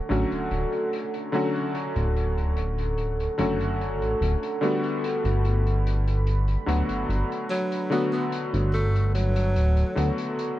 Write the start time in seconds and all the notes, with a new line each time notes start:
Already playing: D3 F#3 A3 C#4 F#4 A4 F#5 C#6
0.09 A1 D3 F#3 A3 C#4 F#4, closed hi-hat
0.32 D1, closed hi-hat
0.51 D1, closed hi-hat
0.72 closed hi-hat
0.93 closed hi-hat
1.14 closed hi-hat
1.32 D3 F#3 A3 C#4 F#4, closed hi-hat
1.56 closed hi-hat
1.75 closed hi-hat
1.96 D1, closed hi-hat
2.16 closed hi-hat
2.38 closed hi-hat
2.57 closed hi-hat
2.78 closed hi-hat
2.98 closed hi-hat
3.20 closed hi-hat
3.38 F#1 D3 F#3 A3 C#4 F#4, closed hi-hat
3.60 closed hi-hat
3.81 closed hi-hat
4.02 A1, closed hi-hat
4.21 D1, closed hi-hat
4.43 closed hi-hat
4.61 D3 G3 A3 B3 F#4 B5, closed hi-hat
4.84 closed hi-hat
5.04 closed hi-hat
5.24 G1, closed hi-hat
5.45 closed hi-hat
5.67 closed hi-hat
5.87 closed hi-hat
6.08 closed hi-hat
6.27 closed hi-hat
6.48 closed hi-hat
6.66 D1 D3 F#3 A3 B3 F#4, closed hi-hat
6.89 G1, closed hi-hat
7.09 G1, closed hi-hat
7.32 closed hi-hat
7.50 F#3, closed hi-hat
7.72 closed hi-hat
7.90 D3 F#3 A3 B3 F#4, closed hi-hat
8.13 B3, closed hi-hat
8.32 closed hi-hat
8.54 G1, closed hi-hat
8.73 A3, closed hi-hat
8.95 closed hi-hat
9.15 F#3, closed hi-hat
9.36 closed hi-hat
9.56 D1, closed hi-hat
9.77 closed hi-hat
9.95 D2 D3 F#3 A3 B3 F#4, closed hi-hat
10.18 closed hi-hat
10.39 closed hi-hat